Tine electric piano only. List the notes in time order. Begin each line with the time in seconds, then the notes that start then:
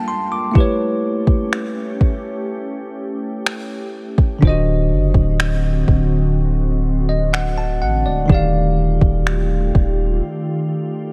Already playing: G3 D4 A4 A#4 F5 G5 A5
0.08 C6
0.32 D6
0.51 A3 E4
0.56 G4 B4
0.60 C#5
4.39 D3 D4
4.43 F4 C5
4.47 F#4 D#5
7.09 D#5
7.33 F#5
7.58 A5
7.82 F#5
8.06 D5
8.26 D#3 D#4
8.30 G4 D5
8.34 F5